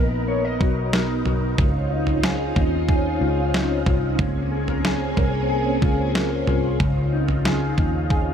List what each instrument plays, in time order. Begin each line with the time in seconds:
Already playing: picked electric bass A#1, string machine B3 D#4 A#4, clean electric guitar B3 A#4 D#5
0.28 clean electric guitar C#5
0.45 clean electric guitar D#5
0.61 picked electric bass B1, clean electric guitar F#4, kick
0.93 clean electric guitar A#4, snare
1.25 picked electric bass B1, clean electric guitar F#4, floor tom
1.58 picked electric bass C#2, string machine C4 C#4 F4, kick, floor tom
1.91 clean electric guitar D#4
2.07 floor tom
2.24 clean electric guitar G#4, snare
2.56 picked electric bass D#2, clean electric guitar D#4, kick, floor tom
2.89 clean electric guitar G#4, kick
3.21 picked electric bass C#2, clean electric guitar F4
3.54 clean electric guitar D#4, snare
3.86 picked electric bass C2, clean electric guitar F4, kick, floor tom
4.19 picked electric bass C#2, string machine A#3 G#4, kick, floor tom
4.52 clean electric guitar G#4
4.68 clean electric guitar A#4, floor tom
4.84 clean electric guitar G#4, snare
5.17 picked electric bass C2, clean electric guitar A#4, kick, floor tom
5.49 clean electric guitar G#4
5.82 picked electric bass C#2, clean electric guitar F4, kick
6.15 clean electric guitar A#4, snare
6.47 picked electric bass C2, clean electric guitar F4, floor tom
6.80 picked electric bass C#2, clean electric guitar C#3, string machine D#4 F4, kick, floor tom
7.13 clean electric guitar D#4
7.28 floor tom
7.45 clean electric guitar G#4, snare
7.78 picked electric bass D#2, clean electric guitar D#4, kick, floor tom
8.10 clean electric guitar G#4, kick